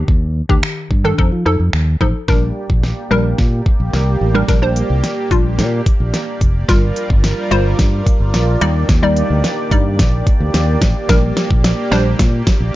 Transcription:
Already playing: synth pluck D#3 D4 G4
0.08 fingered electric bass D#2, kick
0.49 fingered electric bass D2, synth pluck D#3 D4 G4, kick
0.63 finger snap
0.91 fingered electric bass G2, kick
1.04 synth pluck D#3 D4 A4
1.18 fingered electric bass F2, synth pluck F3 D#4 A4, kick
1.32 fingered electric bass F3
1.46 fingered electric bass F2, synth pluck F3 D#4 A4
1.60 fingered electric bass F2
1.73 fingered electric bass D#2, finger snap
2.01 fingered electric bass A1, synth pluck F3 D#4 A4, kick
2.28 fingered electric bass A#1, synth pluck G3 D4 A#4, supersaw synth A#3 G4 D5, kick, snare
2.70 fingered electric bass A#1, kick
2.83 snare
3.11 fingered electric bass A#1, synth pluck G3 D4 A#4
3.38 fingered electric bass A#2, kick, snare
3.66 kick
3.80 fingered electric bass A#1
3.93 fingered electric bass C2, snare
4.21 fingered electric bass A1
4.35 synth pluck G3 D4 A#4
4.48 fingered electric bass A#1, synth pluck G3 D4 A#4, kick, snare, closed hi-hat
4.62 synth pluck G3 D4 C5
4.76 closed hi-hat
4.90 fingered electric bass C2
5.04 snare, closed hi-hat
5.31 fingered electric bass A#1, synth pluck G3 D4 F4, kick, closed hi-hat
5.59 fingered electric bass A#2, snare, closed hi-hat
5.86 kick, closed hi-hat
6.00 fingered electric bass A#1
6.14 snare, closed hi-hat
6.41 fingered electric bass F1, kick, closed hi-hat
6.68 fingered electric bass G1, synth pluck G3 F4 A#4, supersaw synth G3 F4 A#4, kick, snare, closed hi-hat
6.96 closed hi-hat
7.10 fingered electric bass G1, kick
7.24 snare, closed hi-hat
7.51 fingered electric bass G1, synth pluck G3 F4 C5, closed hi-hat
7.79 fingered electric bass G2, kick, snare, closed hi-hat
8.07 kick, closed hi-hat
8.20 fingered electric bass G1
8.34 fingered electric bass A#1, snare, closed hi-hat
8.61 fingered electric bass D#2, supersaw synth D#3 A#3 G4, synth pluck G3 D#4 D5, closed hi-hat
8.89 fingered electric bass D#2, kick, snare, closed hi-hat
9.03 synth pluck G3 D#4 D5
9.16 closed hi-hat
9.30 fingered electric bass D2
9.44 snare, closed hi-hat
9.71 fingered electric bass G2, synth pluck G3 D#4 D5, kick, closed hi-hat
9.99 fingered electric bass A#1, kick, snare, closed hi-hat
10.27 muted fingered electric bass stroke, kick, closed hi-hat
10.40 fingered electric bass D2
10.54 fingered electric bass D#2, snare, closed hi-hat
10.82 fingered electric bass A1, kick, snare, closed hi-hat
11.09 fingered electric bass A#1, synth pluck G3 D4 A#4, kick, snare, closed hi-hat
11.37 snare, closed hi-hat
11.51 fingered electric bass A#1, kick
11.64 snare, closed hi-hat
11.91 fingered electric bass A#1, synth pluck G3 D4 C5, snare, closed hi-hat
12.19 fingered electric bass A#2, kick, snare, closed hi-hat
12.47 kick, snare, closed hi-hat
12.60 fingered electric bass A#1

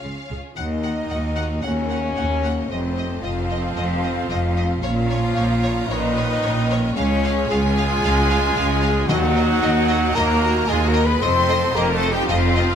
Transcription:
Already playing: french horn section F3 C#4, string section C#4 F4 G#4 C#5, violin section C#5 F5
0.03 double bass section C#2, cello section C#3, viola section F4
0.30 double bass section C#2, cello section C#3, viola section G#4
0.56 double bass section D#2, cello section D#2, trombone section D#3, string section A#3 F#4 A#4 D#5, viola section A#3, french horn section D#4, violin section D#5 F#5, flute D#5
0.83 violin section F#5
1.09 double bass section D#2, cello section D#2, violin section F#5
1.35 violin section F#5
1.62 cello section D#2, double bass section D#2, trombone section C#3, viola section A#3, french horn section C#4, violin section C#5 F#5, flute C#5
1.89 violin section F#5
2.16 cello section D#2, double bass section D#2, violin section F#5
2.44 violin section F#5
2.69 double bass section F1, cello section F2, trombone section C3, viola section A3, string section C4 F4 A4, french horn section C4, flute C5, violin section C5 D#5
2.97 violin section D#5
3.21 double bass section F1, cello section F2, trombone section F3, viola section C4, french horn section F4, violin section D#5 F5, flute F5
3.50 violin section D#5
3.76 double bass section F1, cello section F2, violin section D#5
4.03 violin section D#5
4.29 double bass section F1, cello section F2, violin section D#5
4.57 violin section D#5
4.82 double bass section A#1, cello section A#2, trombone section F3, string section C#4 C#5 A#5, viola section C#4, french horn section F4, violin section C#5 F5, flute F5
5.10 violin section C#5
5.35 double bass section A#1, cello section A#2, violin section C#5
5.63 violin section C#5
5.88 double bass section A#1, cello section A#2, trombone section D#3, french horn section D#4, viola section B4, violin section C#5 D#5, flute D#5
6.17 violin section C#5
6.42 double bass section A#1, cello section A#2, violin section C#5
6.70 violin section C#5
6.94 double bass section C#2, cello section C#2, trombone section C#3, viola section G#3, french horn section C#4, string section G#4, flute C#5, violin section C#5 F5
7.23 violin section F5
7.47 double bass section C#2, cello section C#2, trombone section G#3, viola section F4, french horn section G#4, violin section F5 G#5, flute G#5
7.77 violin section F5
8.02 double bass section C#2, cello section C#2, violin section F5
8.30 violin section F5
8.56 cello section C#2, double bass section C#2, violin section F5
8.82 violin section F5
9.08 double bass section D#2, cello section D#2, timpani D#3, trombone section F#3, string section A#3 D#4 A#4 D#5, viola section D#4, french horn section F#4, violin section D#5 F#5, flute F#5
9.36 violin section D#5
9.62 double bass section D#2, cello section D#2, violin section D#5
9.89 violin section D#5
10.14 cello section D#2, double bass section D#2, trombone section A#3, viola section F#4, french horn section A#4, violin section D#5 A#5, flute A#5
10.42 violin section D#5
10.68 cello section D#2, double bass section D#2, trombone section G#3, viola section F4, french horn section G#4, violin section D#5 G#5, flute G#5
10.86 trombone section A#3, viola section F#4, french horn section A#4, violin section A#5, flute A#5
10.94 violin section D#5
11.04 trombone section B3, viola section G#4, french horn section B4, violin section B5, flute B5
11.21 double bass section F1, cello section F2, trombone section C4, string section C4 F4 A4, viola section A4, french horn section C5, violin section D#5 C6, flute C6
11.49 violin section D#5
11.74 double bass section F1, cello section F2, trombone section A#3, viola section G4, french horn section A#4, violin section D#5 A#5, flute A#5
11.92 trombone section A3, viola section F4, french horn section A4, violin section A5, flute A5
12.02 violin section D#5
12.10 trombone section G3, viola section D#4, french horn section G4, flute G5, violin section G5
12.27 double bass section F1, cello section F2, trombone section F3, viola section C4, french horn section F4, violin section D#5 F5, flute F5
12.55 violin section D#5

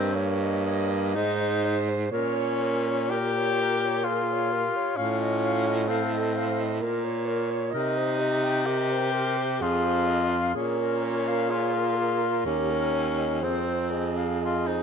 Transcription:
Already playing: baritone saxophone G2, tenor saxophone C4, alto saxophone A#4, clarinet D#5
0.13 tenor saxophone A#3, alto saxophone C#5, clarinet C#5
0.41 clarinet D#5
0.64 clarinet C#5, alto saxophone D#5
0.91 clarinet D#5
1.14 baritone saxophone G#2, tenor saxophone D#4, alto saxophone C5, clarinet D#5
1.40 clarinet C5
1.65 clarinet D#5
1.89 clarinet C5
2.11 baritone saxophone A#2, tenor saxophone C#4, clarinet A#4, alto saxophone C#5
2.36 clarinet C#5
2.61 clarinet A#4
2.88 clarinet C#5
3.11 tenor saxophone G4, alto saxophone A#4, clarinet A#4
3.38 clarinet C#5
3.62 clarinet A#4
3.85 clarinet C#5
4.04 tenor saxophone F4, alto saxophone G#4
4.09 clarinet A#4
4.32 clarinet C#5
4.52 alto saxophone G4, clarinet A#4
4.76 clarinet C#5
4.96 baritone saxophone A2, tenor saxophone C#4, alto saxophone F4, clarinet F5
5.21 clarinet D#5
5.44 clarinet F5
5.68 clarinet D#5
5.88 tenor saxophone C4, alto saxophone A4, clarinet F5
6.12 clarinet D#5
6.34 alto saxophone C5, clarinet F5
6.60 clarinet D#5
6.81 baritone saxophone A#2, alto saxophone A#4, clarinet A#4
7.04 clarinet C#5
7.26 clarinet A#4, alto saxophone C#5
7.50 clarinet C#5
7.71 baritone saxophone C3, tenor saxophone D#4, clarinet A#4, alto saxophone D#5
7.97 clarinet C5
8.18 alto saxophone G4, clarinet D#5
8.43 clarinet G5
8.66 tenor saxophone G4, alto saxophone A#4, clarinet D#5
8.91 clarinet C5
9.12 clarinet A#4, alto saxophone C5
9.38 clarinet C5
9.60 baritone saxophone F2, tenor saxophone F4, alto saxophone G#4, clarinet G#4
9.85 clarinet C5
10.07 clarinet D#5
10.30 clarinet F5
10.54 baritone saxophone A#2, tenor saxophone C#4, clarinet G#4, alto saxophone A#4
10.78 clarinet A#4
11.03 clarinet C#5
11.27 clarinet F5
11.48 tenor saxophone F4, alto saxophone G#4, clarinet C#5
11.73 clarinet A#4
11.96 clarinet G#4, alto saxophone A#4
12.22 clarinet A#4
12.45 baritone saxophone D#2, tenor saxophone C#4, clarinet G4
12.71 clarinet A#4
12.93 clarinet C#5
13.18 clarinet D#5
13.40 baritone saxophone F2, tenor saxophone C4, clarinet G#4, alto saxophone C5
13.68 clarinet C5
13.91 alto saxophone G#4, clarinet D#5
14.17 clarinet F5
14.42 tenor saxophone F4, clarinet D#5
14.67 tenor saxophone D#4, clarinet C5

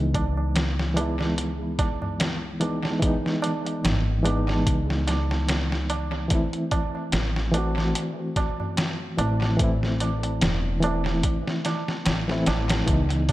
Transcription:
Already playing: upright bass C#2, reed electric piano E3 G#3 B3 D#4
0.14 kick, closed hi-hat, tabla na
0.37 tabla na
0.56 snare, closed hi-hat, tabla na
0.79 snare
0.94 reed electric piano E3 G#3, closed hi-hat, tabla na
0.99 reed electric piano B3 E4
1.20 snare, tabla na
1.38 closed hi-hat, tabla na
1.79 kick, closed hi-hat, tabla na
2.02 tabla na, tabla ge
2.19 snare, closed hi-hat, tabla na
2.60 reed electric piano E3 G#3 B3 D#4, closed hi-hat, tabla na
2.83 snare, tabla na
2.99 reed electric piano E3 G#3, kick, closed hi-hat, tabla na
3.04 reed electric piano B3 D#4
3.26 snare
3.42 closed hi-hat, tabla na
3.65 closed hi-hat, tabla na
3.84 upright bass G#1, snare, closed hi-hat, tabla na, tabla ge
4.23 reed electric piano E3 G#3, closed hi-hat, tabla na
4.27 reed electric piano B3 D#4
4.48 snare, tabla na
4.66 upright bass C#2, kick, closed hi-hat, tabla na
4.90 snare
5.07 snare, closed hi-hat, tabla na
5.31 snare, tabla na
5.48 snare, closed hi-hat, tabla na
5.72 snare
5.90 closed hi-hat, tabla na
6.12 tabla na
6.28 reed electric piano E3 A3, kick, closed hi-hat, tabla na
6.33 reed electric piano C4 E4
6.53 closed hi-hat
6.71 kick, closed hi-hat, tabla na
6.95 tabla na
7.12 upright bass A1, snare, closed hi-hat, tabla na
7.36 snare
7.51 reed electric piano E3 A3, closed hi-hat, tabla na
7.56 reed electric piano C4 F#4
7.78 snare, tabla na
7.95 closed hi-hat, tabla na
8.36 kick, closed hi-hat, tabla na
8.60 tabla na, tabla ge
8.77 snare, closed hi-hat, tabla na
9.18 upright bass A1, reed electric piano E3 A3 C4 E4, closed hi-hat, tabla na
9.42 snare, tabla na
9.57 reed electric piano E3 A3, kick, closed hi-hat, tabla na
9.61 reed electric piano C4 E4
9.83 snare
10.00 closed hi-hat, tabla na
10.23 closed hi-hat, tabla na
10.41 upright bass E1, snare, closed hi-hat, tabla na, tabla ge
10.80 reed electric piano E3 A3, closed hi-hat, tabla na
10.85 reed electric piano C4 E4
11.06 snare, tabla na
11.23 kick, closed hi-hat, tabla na
11.47 snare
11.65 snare, closed hi-hat, tabla na
11.88 snare, tabla na
12.06 upright bass A1, snare, closed hi-hat, tabla na
12.28 reed electric piano E3 A3 C4 E4, snare
12.46 upright bass A1, snare, closed hi-hat, tabla na
12.69 snare, closed hi-hat, tabla na
12.86 upright bass C#2, reed electric piano E3 G#3, synth texture G#4, kick, closed hi-hat, tabla na
12.91 reed electric piano B3 D#4
13.10 closed hi-hat
13.29 kick, closed hi-hat, tabla na

